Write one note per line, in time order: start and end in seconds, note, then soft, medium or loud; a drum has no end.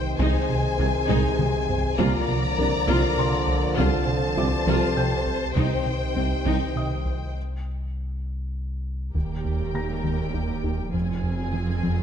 0.00 0.15 C2 medium
0.00 0.15 C3 medium
0.00 1.99 D#3 medium
0.00 0.16 C4 medium
0.00 0.15 G4 medium
0.00 1.95 C5 medium
0.00 1.35 D#5 soft
0.00 0.16 G5 medium
0.00 1.35 G6 medium
0.19 0.31 C2 medium
0.19 0.27 C2 medium
0.19 5.53 C2 medium
0.19 0.37 C2 medium
0.19 0.27 C3 medium
0.19 1.95 C3 medium
0.19 0.37 G#3 medium
0.19 1.95 C4 medium
0.19 0.47 D#4 medium
0.19 1.95 G#4 medium
0.19 1.95 G#5 medium
0.19 taiko medium
0.49 0.67 C3 medium
0.79 0.87 C2 medium
0.79 0.91 C2 medium
0.79 0.97 C2 medium
0.79 0.87 C3 medium
0.79 0.87 C4 medium
0.79 0.97 G#4 medium
0.79 2.55 G#6 soft
1.09 1.17 C2 medium
1.09 1.21 C2 medium
1.09 1.27 C2 medium
1.09 1.17 C3 medium
1.09 1.27 G#3 medium
1.09 1.37 D#4 medium
1.09 taiko low-mid medium
1.39 1.57 C3 medium
1.39 taiko mid medium
1.68 1.86 C2 medium
1.68 taiko low medium
1.98 2.10 C2 medium
1.98 2.16 C2 medium
1.98 2.07 C2 medium
1.98 2.07 C3 medium
1.98 4.63 D3 medium
1.98 5.40 F3 medium
1.98 3.74 A#3 medium
1.98 2.16 A#3 medium
1.98 2.26 F4 medium
1.98 3.73 A#4 medium
1.98 3.74 D5 medium
1.98 3.77 A#5 medium
1.98 taiko medium
2.28 2.46 C3 medium
2.58 2.76 C2 medium
2.58 2.66 C2 medium
2.58 2.70 C2 medium
2.58 2.67 C3 medium
2.58 2.67 D4 medium
2.58 2.76 A#4 medium
2.88 3.06 C2 loud
2.88 2.96 C2 medium
2.88 3.00 C2 medium
2.88 2.97 C3 medium
2.88 3.06 A#3 medium
2.88 3.16 F4 medium
3.17 3.35 C3 medium
3.17 4.93 C5 soft
3.17 4.93 C6 medium
3.47 3.65 C2 medium
3.77 3.95 C2 medium
3.77 3.90 C2 medium
3.77 3.86 C2 medium
3.77 3.86 C3 medium
3.77 3.96 F3 medium
3.77 7.35 C4 medium
3.77 4.06 F4 medium
3.77 5.39 A4 medium
3.77 7.36 C5 medium
3.77 5.53 A5 medium
3.77 taiko loud
4.07 4.25 C3 medium
4.37 4.55 C2 medium
4.37 4.49 C2 medium
4.37 4.45 C2 medium
4.37 4.46 C3 medium
4.37 4.46 C4 medium
4.37 4.55 F4 medium
4.37 6.13 D5 soft
4.37 6.13 D6 medium
4.67 4.85 C2 medium
4.67 4.79 C2 medium
4.67 4.75 C2 medium
4.67 7.36 C3 medium
4.67 4.76 C3 medium
4.67 4.85 F3 medium
4.67 4.95 F4 medium
4.97 5.15 C3 medium
4.97 6.72 G5 soft
4.97 6.72 G6 medium
5.26 5.44 C2 medium
5.56 5.74 C2 medium
5.56 5.64 C2 medium
5.56 5.69 C2 medium
5.56 9.11 C2 medium
5.56 5.75 C3 medium
5.56 5.65 C3 medium
5.56 7.32 D#3 medium
5.56 5.84 D#4 medium
5.56 7.32 G4 medium
5.56 7.33 G5 medium
5.56 taiko medium
5.86 6.04 C3 medium
6.16 6.34 C2 medium
6.16 6.28 C2 medium
6.16 6.24 C2 soft
6.16 6.25 C3 soft
6.16 6.34 C4 medium
6.16 6.25 C4 medium
6.46 6.64 C2 medium
6.46 6.54 C2 medium
6.46 6.58 C2 medium
6.46 6.54 C3 medium
6.46 6.64 C3 medium
6.46 6.74 D#4 medium
6.76 6.94 C3 medium
6.76 7.32 D#5 soft
6.76 7.32 D#6 medium
7.05 7.23 C2 medium
9.14 10.95 D#1 medium
9.14 10.90 D#2 soft
9.14 9.33 D#2 medium
9.14 10.90 D#2 soft
9.14 9.33 D#3 medium
9.14 10.90 G3 soft
9.14 10.90 G4 soft
9.14 10.90 A#4 soft
9.14 10.90 G5 soft
9.14 taiko medium
9.45 9.63 D#2 medium
9.74 9.92 D#3 medium
9.74 9.93 A#3 soft
9.74 11.50 A#5 soft
9.74 11.50 A#6 soft
10.04 10.22 D#2 medium
10.04 10.22 D#3 medium
10.34 10.52 D#2 soft
10.34 10.52 D#4 medium
10.64 10.82 D#2 medium
10.64 10.82 D#4 medium
10.93 12.03 F1 soft
10.93 12.03 F1 medium
10.93 11.12 F2 medium
10.93 12.03 F2 soft
10.93 11.12 F3 medium
10.93 12.03 C4 soft
10.93 12.03 F4 soft
10.93 12.03 G#4 soft
10.93 12.03 G#5 soft
11.23 11.41 F2 medium
11.53 11.71 F3 medium
11.53 11.72 C4 medium
11.83 12.01 F2 medium
11.83 12.01 F3 medium